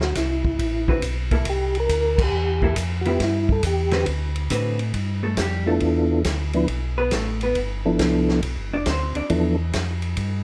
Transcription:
Already playing: tonewheel organ D2
0.01 tonewheel organ F#4, snare
0.15 tonewheel organ C2 E4, kick, snare, hi-hat pedal, ride
0.45 kick
0.59 tonewheel organ A1, kick, ride
0.88 hollow-body jazz guitar D3 C4 F#4 B4, kick
1.02 tonewheel organ B1, kick, hi-hat pedal, ride
1.31 hollow-body jazz guitar A#3 E4 A4, kick, ride
1.45 tonewheel organ C2, kick, ride
1.49 tonewheel organ G4
1.75 ride
1.80 tonewheel organ A#4
1.89 tonewheel organ D2, kick, hi-hat pedal, ride
2.18 kick, crash
2.24 tonewheel organ G4
2.32 tonewheel organ E2
2.62 hollow-body jazz guitar A#3 E4 A4, kick
2.76 tonewheel organ F2, kick, hi-hat pedal, ride
3.01 tonewheel organ F#4
3.05 hollow-body jazz guitar F3 B3 E4, tonewheel organ G4, ride
3.20 tonewheel organ G2, kick, snare, ride
3.24 tonewheel organ E4
3.49 tonewheel organ A4, kick
3.63 tonewheel organ E2 G4, kick, hi-hat pedal, ride
3.91 hollow-body jazz guitar D3 C4 F#4 B4, snare, ride
4.06 tonewheel organ D2, kick, ride
4.36 ride
4.50 tonewheel organ A2, hollow-body jazz guitar D3 C4 F#4 B4, kick, hi-hat pedal, ride
4.79 ride
4.94 tonewheel organ G2, kick, ride
5.23 hollow-body jazz guitar A3 A4
5.37 tonewheel organ F2, hollow-body jazz guitar G3 G4, kick, snare, hi-hat pedal, ride
5.66 hollow-body jazz guitar A3 A4, tonewheel organ B3 D4 E4 F4 A4
5.80 tonewheel organ E2, kick, ride
6.24 tonewheel organ D2, kick, snare, hi-hat pedal, ride
6.53 tonewheel organ F3 B3 D4 E4 B4, ride
6.68 tonewheel organ B1, kick, ride
6.98 hollow-body jazz guitar B3 B4
7.11 tonewheel organ A1, hollow-body jazz guitar A3 A4, kick, snare, hi-hat pedal, ride
7.41 hollow-body jazz guitar B3 B4, ride
7.55 tonewheel organ G1, kick, ride
7.85 tonewheel organ F3 B3 D4 E4 A4
7.99 tonewheel organ C2, kick, snare, hi-hat pedal, ride
8.29 snare
8.43 tonewheel organ B1, kick, ride
8.56 tonewheel organ G1
8.71 tonewheel organ F1, hollow-body jazz guitar D4 D5
8.86 tonewheel organ D2, hollow-body jazz guitar C4 C5, kick, snare, hi-hat pedal, ride
9.14 tonewheel organ D2, hollow-body jazz guitar D4 D5, ride
9.30 tonewheel organ E2 F3 B3 D4 E4 A4, kick, ride
9.73 tonewheel organ F2, kick, snare, hi-hat pedal, ride
10.02 ride
10.17 tonewheel organ G2, kick, ride

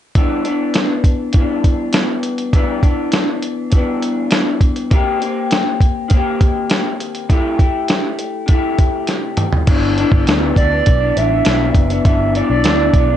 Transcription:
0.15 clean electric guitar G2 E3 B3 D4, kick, closed hi-hat
0.44 clean electric guitar E3 B3 D4, closed hi-hat
0.74 snare, closed hi-hat
1.04 kick, closed hi-hat
1.32 clean electric guitar G2 E3, kick, closed hi-hat
1.38 clean electric guitar B3 D4
1.64 kick, closed hi-hat
1.93 snare, closed hi-hat
2.23 closed hi-hat
2.38 closed hi-hat
2.53 clean electric guitar G2 E3 B3 D4, kick, closed hi-hat
2.83 clean electric guitar E3 B3 D4, kick, closed hi-hat
3.12 snare, closed hi-hat
3.43 closed hi-hat
3.70 clean electric guitar G2 E3, kick, closed hi-hat
3.76 clean electric guitar B3 D4
4.02 closed hi-hat
4.31 snare, closed hi-hat
4.61 kick, closed hi-hat
4.76 closed hi-hat
4.90 clean electric guitar D#3 A#3 C4 G4, kick, closed hi-hat
5.20 clean electric guitar C4 G4, closed hi-hat
5.24 clean electric guitar A#3
5.51 snare, closed hi-hat
5.81 kick, closed hi-hat
6.08 clean electric guitar D#3 A#3, kick, closed hi-hat
6.14 clean electric guitar C4 G4
6.41 kick, closed hi-hat
6.70 snare, closed hi-hat
7.00 closed hi-hat
7.15 closed hi-hat
7.29 clean electric guitar C3 A3 E4 G4, kick, closed hi-hat
7.58 clean electric guitar A3 E4 G4, kick, closed hi-hat
7.88 snare, closed hi-hat
8.19 closed hi-hat
8.46 clean electric guitar C3 A3, kick, closed hi-hat
8.52 clean electric guitar E4 G4
8.78 kick, closed hi-hat
9.07 snare, closed hi-hat
9.37 closed hi-hat, mid tom
9.53 floor tom
9.67 picked electric bass G1, clean electric guitar G2 E3 B3 D4, kick, closed hi-hat, crash
9.96 clean electric guitar G2 E3 B3 D4, closed hi-hat
10.12 picked electric bass G1, clean electric guitar B3 D4, kick
10.16 clean electric guitar E3
10.27 picked electric bass D2, clean electric guitar G2 E3 B3 D4, snare, closed hi-hat
10.56 picked electric bass D2, clean electric guitar G2 E3 B3, soft synth lead D5, kick, closed hi-hat
10.60 clean electric guitar D4
10.71 clean electric guitar E3 B3 D4
10.86 picked electric bass B1, kick, closed hi-hat
11.01 clean electric guitar E3 B3 D4
11.16 picked electric bass A1, clean electric guitar G2 E3 B3 D4, soft synth lead E5, closed hi-hat
11.30 clean electric guitar B3 D4
11.34 clean electric guitar E3
11.45 picked electric bass B1, clean electric guitar G2 E3 B3, snare, closed hi-hat
11.49 clean electric guitar D4
11.75 picked electric bass F#1, kick, closed hi-hat
11.90 clean electric guitar B3 D4, closed hi-hat
11.94 clean electric guitar E3
12.04 picked electric bass G1, clean electric guitar G2 E3 B3 D4, soft synth lead E5, kick, closed hi-hat
12.33 clean electric guitar G2 E3 B3, soft synth lead D5, closed hi-hat
12.37 clean electric guitar D4
12.50 picked electric bass B1, clean electric guitar E3 B3 D4
12.64 picked electric bass D2, clean electric guitar G2 E3 B3 D4, snare, closed hi-hat
12.93 picked electric bass B1, clean electric guitar G2 E3 B3, kick, closed hi-hat
12.98 clean electric guitar D4
13.10 clean electric guitar B3 D4

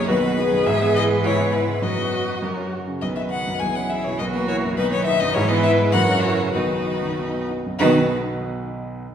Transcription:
Already playing: grand piano B1 F#2 A#3 E4, cello F#3, violin A#4
0.08 grand piano B1, cello D#3, viola F#4, violin B4
0.23 grand piano B3
0.38 grand piano D#4, viola G#4
0.52 grand piano F#2
0.66 grand piano G#2, cello E3, violin B4 E5
0.81 grand piano B3
0.96 grand piano E4, violin D#5
1.09 grand piano G#3
1.24 grand piano G#2, viola E4, violin C#5
1.38 grand piano B3
1.53 grand piano E4, violin B4
1.67 grand piano G#3
1.82 grand piano F#2, cello F#3, viola F#4, violin B4 D#5
1.98 grand piano B3
2.13 grand piano F#4
2.28 grand piano F#3
2.42 grand piano F#2, cello F#3, violin A#4
2.57 grand piano C#4
2.72 grand piano F#4
2.88 grand piano C#3
3.01 grand piano B1, cello D#3, violin B4 D#5
3.16 grand piano D#4, violin E5
3.30 grand piano F#4, violin F#5
3.47 grand piano F#2
3.60 grand piano B1, cello E3, viola E4, violin G#4 G#5
3.76 grand piano C#4, violin F#5
3.90 grand piano E4, violin E5
4.05 grand piano B2, violin C#5
4.19 grand piano B1, viola F#4, violin A#4 D#5
4.34 grand piano A#3, violin B4
4.48 grand piano E4, violin C#5
4.64 grand piano F#2
4.77 grand piano B1, cello D#3, viola D#4, violin B4
4.92 grand piano B3, violin C#5
5.05 grand piano D#4, violin E5
5.20 grand piano F#2, violin D#5
5.34 grand piano G#2, cello E3, viola E4, violin B4 C#5
5.49 grand piano B3, violin D#5
5.63 grand piano E4, violin E5
5.80 grand piano G#3
5.92 grand piano F#2, cello E3, viola F#4, violin A#4 F#5
6.09 grand piano C#4
6.22 grand piano E4, violin C#5
6.40 grand piano C#3
6.53 grand piano B1, cello D#3, viola D#4, violin F#4 B4
6.71 grand piano B3
6.87 grand piano D#4
7.02 grand piano F#2
7.19 grand piano B1
7.35 grand piano B3
7.50 grand piano D#4
7.66 grand piano F#2
7.79 grand piano B1 B2 B3 D#4 B4 D#5, cello D#3, viola B3, violin F#4 B4

